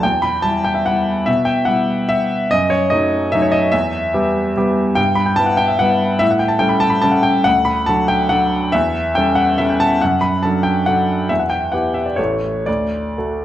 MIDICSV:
0, 0, Header, 1, 2, 480
1, 0, Start_track
1, 0, Tempo, 411805
1, 33, Time_signature, 3, 2, 24, 8
1, 7713, Tempo, 421348
1, 10593, Tempo, 430416
1, 13473, Tempo, 469116
1, 14433, Tempo, 508906
1, 15172, End_track
2, 0, Start_track
2, 0, Title_t, "Grand piano"
2, 0, Program_c, 0, 0
2, 0, Control_c, 0, 64, 127
2, 37, Note_on_c, 0, 79, 91
2, 53, Control_c, 0, 64, 0
2, 55, Note_on_c, 0, 40, 55
2, 241, Control_c, 0, 64, 127
2, 258, Note_on_c, 0, 83, 84
2, 272, Note_off_c, 0, 79, 0
2, 494, Note_on_c, 0, 81, 86
2, 506, Note_off_c, 0, 83, 0
2, 506, Note_on_c, 0, 55, 44
2, 508, Note_on_c, 0, 64, 48
2, 509, Note_off_c, 0, 40, 0
2, 751, Note_on_c, 0, 79, 79
2, 752, Note_off_c, 0, 81, 0
2, 867, Note_on_c, 0, 76, 57
2, 882, Note_off_c, 0, 79, 0
2, 964, Note_off_c, 0, 55, 0
2, 965, Note_off_c, 0, 64, 0
2, 999, Note_on_c, 0, 78, 78
2, 1003, Note_off_c, 0, 76, 0
2, 1019, Note_on_c, 0, 55, 42
2, 1022, Note_on_c, 0, 64, 49
2, 1446, Note_off_c, 0, 55, 0
2, 1447, Note_off_c, 0, 64, 0
2, 1468, Note_on_c, 0, 76, 86
2, 1482, Note_off_c, 0, 78, 0
2, 1484, Note_on_c, 0, 47, 55
2, 1511, Control_c, 0, 64, 0
2, 1686, Control_c, 0, 64, 127
2, 1692, Note_on_c, 0, 79, 79
2, 1707, Note_off_c, 0, 76, 0
2, 1926, Note_on_c, 0, 78, 83
2, 1935, Note_off_c, 0, 47, 0
2, 1938, Note_off_c, 0, 79, 0
2, 1946, Note_on_c, 0, 55, 45
2, 1955, Note_on_c, 0, 64, 46
2, 2429, Note_off_c, 0, 78, 0
2, 2432, Note_on_c, 0, 76, 88
2, 2880, Note_off_c, 0, 55, 0
2, 2885, Note_off_c, 0, 64, 0
2, 2923, Note_on_c, 0, 75, 95
2, 2925, Note_off_c, 0, 76, 0
2, 2941, Note_on_c, 0, 42, 58
2, 2947, Control_c, 0, 64, 0
2, 3140, Control_c, 0, 64, 127
2, 3146, Note_on_c, 0, 73, 82
2, 3158, Note_off_c, 0, 75, 0
2, 3381, Note_on_c, 0, 75, 84
2, 3389, Note_off_c, 0, 42, 0
2, 3389, Note_off_c, 0, 73, 0
2, 3402, Note_on_c, 0, 54, 43
2, 3402, Note_on_c, 0, 57, 41
2, 3411, Note_on_c, 0, 63, 45
2, 3832, Note_off_c, 0, 54, 0
2, 3832, Note_off_c, 0, 57, 0
2, 3837, Note_off_c, 0, 63, 0
2, 3868, Note_off_c, 0, 75, 0
2, 3868, Note_on_c, 0, 76, 86
2, 3888, Note_on_c, 0, 54, 48
2, 3896, Note_on_c, 0, 57, 46
2, 3898, Note_on_c, 0, 63, 51
2, 3985, Note_on_c, 0, 73, 59
2, 3993, Note_off_c, 0, 76, 0
2, 4099, Note_on_c, 0, 75, 84
2, 4110, Note_off_c, 0, 73, 0
2, 4309, Note_off_c, 0, 54, 0
2, 4314, Note_off_c, 0, 57, 0
2, 4314, Note_off_c, 0, 63, 0
2, 4331, Note_on_c, 0, 76, 88
2, 4341, Note_off_c, 0, 75, 0
2, 4351, Note_on_c, 0, 40, 61
2, 4370, Control_c, 0, 64, 0
2, 4528, Control_c, 0, 64, 127
2, 4806, Note_off_c, 0, 40, 0
2, 4824, Note_on_c, 0, 55, 46
2, 4824, Note_on_c, 0, 59, 45
2, 4830, Note_on_c, 0, 67, 53
2, 5275, Note_off_c, 0, 55, 0
2, 5275, Note_off_c, 0, 59, 0
2, 5278, Note_off_c, 0, 67, 0
2, 5310, Note_off_c, 0, 76, 0
2, 5324, Note_on_c, 0, 55, 47
2, 5332, Note_on_c, 0, 67, 52
2, 5335, Note_on_c, 0, 59, 45
2, 5759, Note_off_c, 0, 55, 0
2, 5763, Note_off_c, 0, 67, 0
2, 5764, Note_off_c, 0, 59, 0
2, 5774, Note_on_c, 0, 79, 96
2, 5787, Note_on_c, 0, 43, 62
2, 5822, Control_c, 0, 64, 0
2, 6008, Note_on_c, 0, 83, 82
2, 6016, Control_c, 0, 64, 127
2, 6020, Note_off_c, 0, 79, 0
2, 6131, Note_on_c, 0, 79, 69
2, 6139, Note_off_c, 0, 83, 0
2, 6248, Note_on_c, 0, 81, 100
2, 6250, Note_off_c, 0, 43, 0
2, 6261, Note_off_c, 0, 79, 0
2, 6263, Note_on_c, 0, 55, 43
2, 6263, Note_on_c, 0, 59, 47
2, 6272, Note_on_c, 0, 64, 48
2, 6366, Note_on_c, 0, 78, 63
2, 6382, Note_off_c, 0, 81, 0
2, 6494, Note_on_c, 0, 79, 89
2, 6504, Note_off_c, 0, 78, 0
2, 6616, Note_on_c, 0, 76, 64
2, 6631, Note_off_c, 0, 79, 0
2, 6717, Note_off_c, 0, 55, 0
2, 6717, Note_off_c, 0, 59, 0
2, 6722, Note_off_c, 0, 64, 0
2, 6749, Note_on_c, 0, 78, 96
2, 6755, Note_off_c, 0, 76, 0
2, 6764, Note_on_c, 0, 59, 50
2, 6767, Note_on_c, 0, 55, 48
2, 6776, Note_on_c, 0, 64, 51
2, 7196, Note_off_c, 0, 59, 0
2, 7198, Note_off_c, 0, 55, 0
2, 7202, Note_off_c, 0, 64, 0
2, 7217, Note_on_c, 0, 76, 96
2, 7233, Note_on_c, 0, 45, 63
2, 7235, Note_off_c, 0, 78, 0
2, 7261, Control_c, 0, 64, 0
2, 7345, Note_off_c, 0, 76, 0
2, 7352, Note_on_c, 0, 78, 67
2, 7410, Control_c, 0, 64, 127
2, 7451, Note_on_c, 0, 79, 68
2, 7471, Note_off_c, 0, 78, 0
2, 7557, Note_on_c, 0, 81, 70
2, 7581, Note_off_c, 0, 79, 0
2, 7682, Note_on_c, 0, 79, 91
2, 7691, Note_on_c, 0, 61, 48
2, 7694, Note_off_c, 0, 45, 0
2, 7696, Note_off_c, 0, 81, 0
2, 7697, Note_on_c, 0, 55, 48
2, 7698, Note_on_c, 0, 69, 49
2, 7796, Note_on_c, 0, 83, 71
2, 7818, Note_off_c, 0, 79, 0
2, 7922, Note_on_c, 0, 81, 92
2, 7935, Note_off_c, 0, 83, 0
2, 8034, Note_on_c, 0, 83, 74
2, 8059, Note_off_c, 0, 81, 0
2, 8140, Note_off_c, 0, 61, 0
2, 8144, Note_off_c, 0, 55, 0
2, 8144, Note_off_c, 0, 69, 0
2, 8167, Note_on_c, 0, 81, 88
2, 8177, Note_off_c, 0, 83, 0
2, 8179, Note_on_c, 0, 55, 47
2, 8188, Note_on_c, 0, 61, 47
2, 8189, Note_on_c, 0, 69, 55
2, 8280, Note_on_c, 0, 78, 62
2, 8304, Note_off_c, 0, 81, 0
2, 8409, Note_on_c, 0, 79, 88
2, 8420, Note_off_c, 0, 78, 0
2, 8620, Note_off_c, 0, 55, 0
2, 8624, Note_off_c, 0, 61, 0
2, 8625, Note_off_c, 0, 69, 0
2, 8652, Note_on_c, 0, 78, 106
2, 8659, Note_off_c, 0, 79, 0
2, 8670, Note_on_c, 0, 38, 57
2, 8696, Control_c, 0, 64, 0
2, 8888, Note_on_c, 0, 83, 86
2, 8898, Note_off_c, 0, 78, 0
2, 8909, Control_c, 0, 64, 127
2, 9133, Note_off_c, 0, 38, 0
2, 9133, Note_on_c, 0, 81, 83
2, 9139, Note_off_c, 0, 83, 0
2, 9156, Note_on_c, 0, 54, 44
2, 9164, Note_on_c, 0, 62, 45
2, 9165, Note_on_c, 0, 69, 46
2, 9381, Note_on_c, 0, 79, 92
2, 9385, Note_off_c, 0, 81, 0
2, 9595, Note_off_c, 0, 54, 0
2, 9599, Note_off_c, 0, 62, 0
2, 9600, Note_off_c, 0, 69, 0
2, 9620, Note_on_c, 0, 78, 93
2, 9627, Note_on_c, 0, 54, 49
2, 9632, Note_off_c, 0, 79, 0
2, 9632, Note_on_c, 0, 62, 50
2, 9645, Note_on_c, 0, 69, 53
2, 10067, Note_off_c, 0, 54, 0
2, 10069, Note_off_c, 0, 62, 0
2, 10076, Note_off_c, 0, 69, 0
2, 10109, Note_off_c, 0, 78, 0
2, 10111, Note_on_c, 0, 76, 91
2, 10135, Note_on_c, 0, 40, 65
2, 10136, Control_c, 0, 64, 0
2, 10344, Control_c, 0, 64, 127
2, 10588, Note_off_c, 0, 40, 0
2, 10590, Note_off_c, 0, 76, 0
2, 10600, Note_on_c, 0, 79, 92
2, 10618, Note_on_c, 0, 55, 45
2, 10622, Note_on_c, 0, 61, 45
2, 10625, Note_on_c, 0, 69, 47
2, 10825, Note_on_c, 0, 78, 85
2, 10837, Note_off_c, 0, 79, 0
2, 11047, Note_off_c, 0, 55, 0
2, 11049, Note_off_c, 0, 61, 0
2, 11050, Note_off_c, 0, 69, 0
2, 11074, Note_off_c, 0, 78, 0
2, 11077, Note_on_c, 0, 76, 89
2, 11093, Note_on_c, 0, 55, 45
2, 11101, Note_on_c, 0, 61, 45
2, 11102, Note_on_c, 0, 69, 50
2, 11200, Note_off_c, 0, 76, 0
2, 11206, Note_on_c, 0, 79, 58
2, 11323, Note_off_c, 0, 79, 0
2, 11323, Note_on_c, 0, 81, 98
2, 11514, Note_off_c, 0, 55, 0
2, 11518, Note_off_c, 0, 61, 0
2, 11519, Note_off_c, 0, 69, 0
2, 11553, Note_off_c, 0, 81, 0
2, 11562, Note_on_c, 0, 78, 83
2, 11573, Control_c, 0, 64, 0
2, 11585, Note_on_c, 0, 42, 59
2, 11732, Control_c, 0, 64, 127
2, 11780, Note_on_c, 0, 83, 84
2, 11787, Note_off_c, 0, 78, 0
2, 12018, Note_off_c, 0, 83, 0
2, 12022, Note_off_c, 0, 42, 0
2, 12022, Note_on_c, 0, 81, 72
2, 12039, Note_on_c, 0, 54, 38
2, 12049, Note_on_c, 0, 69, 45
2, 12050, Note_on_c, 0, 62, 42
2, 12250, Note_on_c, 0, 79, 79
2, 12264, Note_off_c, 0, 81, 0
2, 12476, Note_off_c, 0, 54, 0
2, 12482, Note_off_c, 0, 62, 0
2, 12482, Note_off_c, 0, 69, 0
2, 12504, Note_off_c, 0, 79, 0
2, 12507, Note_on_c, 0, 78, 88
2, 12520, Note_on_c, 0, 54, 43
2, 12527, Note_on_c, 0, 62, 42
2, 12531, Note_on_c, 0, 69, 45
2, 12955, Note_off_c, 0, 54, 0
2, 12959, Note_off_c, 0, 62, 0
2, 12960, Note_off_c, 0, 69, 0
2, 12987, Note_on_c, 0, 76, 78
2, 12993, Note_off_c, 0, 78, 0
2, 13001, Note_on_c, 0, 40, 48
2, 13018, Control_c, 0, 64, 0
2, 13102, Note_on_c, 0, 78, 59
2, 13109, Note_off_c, 0, 76, 0
2, 13179, Control_c, 0, 64, 127
2, 13214, Note_on_c, 0, 79, 75
2, 13226, Note_off_c, 0, 78, 0
2, 13461, Note_on_c, 0, 78, 70
2, 13463, Note_off_c, 0, 40, 0
2, 13465, Note_off_c, 0, 79, 0
2, 13474, Note_on_c, 0, 59, 38
2, 13479, Note_on_c, 0, 64, 42
2, 13488, Note_on_c, 0, 67, 43
2, 13691, Note_on_c, 0, 76, 65
2, 13695, Note_off_c, 0, 78, 0
2, 13812, Note_off_c, 0, 76, 0
2, 13812, Note_on_c, 0, 74, 48
2, 13895, Note_off_c, 0, 59, 0
2, 13898, Note_off_c, 0, 64, 0
2, 13903, Note_off_c, 0, 67, 0
2, 13918, Note_on_c, 0, 73, 68
2, 13934, Note_off_c, 0, 74, 0
2, 13935, Note_on_c, 0, 57, 39
2, 13939, Note_on_c, 0, 33, 53
2, 13943, Note_on_c, 0, 69, 39
2, 13946, Note_on_c, 0, 64, 36
2, 13957, Control_c, 0, 64, 0
2, 14125, Control_c, 0, 64, 127
2, 14392, Note_off_c, 0, 57, 0
2, 14396, Note_off_c, 0, 69, 0
2, 14398, Note_off_c, 0, 64, 0
2, 14420, Note_off_c, 0, 33, 0
2, 14425, Note_off_c, 0, 73, 0
2, 14429, Note_on_c, 0, 74, 68
2, 14437, Note_on_c, 0, 38, 51
2, 14455, Control_c, 0, 64, 0
2, 14603, Control_c, 0, 64, 127
2, 14899, Note_off_c, 0, 38, 0
2, 14916, Note_on_c, 0, 57, 37
2, 14917, Note_on_c, 0, 66, 34
2, 14922, Note_on_c, 0, 69, 41
2, 15172, Note_off_c, 0, 57, 0
2, 15172, Note_off_c, 0, 66, 0
2, 15172, Note_off_c, 0, 69, 0
2, 15172, Note_off_c, 0, 74, 0
2, 15172, End_track
0, 0, End_of_file